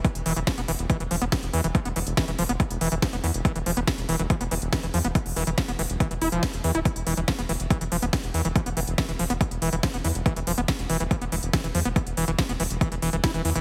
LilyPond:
<<
  \new Staff \with { instrumentName = "Acid bass" } { \clef bass \time 4/4 \key c \major \tempo 4 = 141 e16 r16 e16 e16 f16 b16 e16 r16 e16 e16 f16 b16 e16 r16 e16 e16 | f16 b16 e16 r16 e16 e16 f16 b16 e16 r16 e16 e16 f16 b16 e16 r16 | e16 e16 f16 b16 e16 r16 e16 e16 f16 b16 e16 r16 e16 e16 f16 b16 | e16 r16 e16 e16 f16 b16 e16 r16 e16 e16 e'16 f16 e16 r16 e16 e'16 |
e16 r16 e16 e16 f16 b16 e16 r16 e16 e16 f16 b16 e16 r16 e16 e16 | f16 b16 e16 r16 e16 e16 f16 b16 e16 r16 e16 e16 f16 b16 e16 r16 | e16 e16 f16 b16 e16 r16 e16 e16 f16 b16 e16 r16 e16 e16 f16 b16 | e16 r16 e16 e16 f16 b16 e16 r16 e16 e16 e16 e16 e'16 e16 e16 e16 | }
  \new Staff \with { instrumentName = "Analog synth bass" } { \clef bass \time 4/4 \key c \major r16 e,,16 e,,16 e,,16 r16 e,,16 e,,16 e,,16 r16 e,,16 e,,16 e,,16 r16 e,,16 e,16 e,,16 | r16 e,,16 e,,16 e,,16 r16 e,,16 e,,16 e,,16 r16 e,,16 e,,16 e,,16 r16 e,,16 e,16 e,,16 | r16 e,,16 e,,16 e,,16 r16 e,,16 e,,16 e,,16 r16 e,,16 e,,16 e,,16 r16 e,,16 e,16 e,,16 | r16 e,,16 e,,16 e,,16 r16 e,,16 e,,16 e,,16 r16 e,,16 e,,16 e,,16 r16 e,,16 e,16 d,,16 |
r16 e,,16 e,,16 e,,16 r16 e,,16 e,,16 e,,16 r16 e,,16 e,,16 e,,16 r16 e,,16 e,16 e,,16 | r16 e,,16 e,,16 e,,16 r16 e,,16 e,,16 e,,16 r16 e,,16 e,,16 e,,16 r16 e,,16 e,16 e,,16 | r16 e,,16 e,,16 e,,16 r16 e,,16 e,,16 e,,16 r16 e,,16 e,,16 e,,16 r16 e,,16 e,16 e,,16 | r16 e,,16 e,,16 e,,16 r16 e,,16 e,,16 e,,16 r16 e,,16 e,,16 e,,16 r16 e,,16 e,16 e,,16 | }
  \new DrumStaff \with { instrumentName = "Drums" } \drummode { \time 4/4 <hh bd>16 hh16 hho16 hh16 <hh bd sn>16 hh16 hho16 hh16 <hh bd>16 hh16 hho16 hh16 <hh bd sn>16 hh16 hho16 hh16 | <hh bd>16 hh16 hho16 hh16 <hh bd sn>16 hh16 hho16 hh16 <hh bd>16 hh16 hho16 hh16 <hh bd sn>16 hh16 hho16 hh16 | <hh bd>16 hh16 hho16 hh16 <hh bd sn>16 hh16 hho16 hh16 <hh bd>16 hh16 hho16 hh16 <hh bd sn>16 hh16 hho16 hh16 | <hh bd>16 hho16 hho16 hh16 <hh bd sn>16 hh16 hho16 hh16 <hh bd>16 hh16 hho16 hh16 <hh bd sn>16 hh16 hho16 hh16 |
<hh bd>16 hh16 hho16 hh16 <hh bd sn>16 hh16 hho16 hh16 <hh bd>16 hh16 hho16 hh16 <hh bd sn>16 hh16 hho16 hh16 | <hh bd>16 hh16 hho16 hh16 <hh bd sn>16 hh16 hho16 hh16 <hh bd>16 hh16 hho16 hh16 <hh bd sn>16 hh16 hho16 hh16 | <hh bd>16 hh16 hho16 hh16 <hh bd sn>16 hh16 hho16 hh16 <hh bd>16 hh16 hho16 hh16 <hh bd sn>16 hh16 hho16 hh16 | <hh bd>16 hh16 hho16 hh16 <hh bd sn>16 hh16 hho16 hh16 <hh bd>16 hh16 hho16 hh16 <hh bd sn>16 hh16 hho16 hh16 | }
>>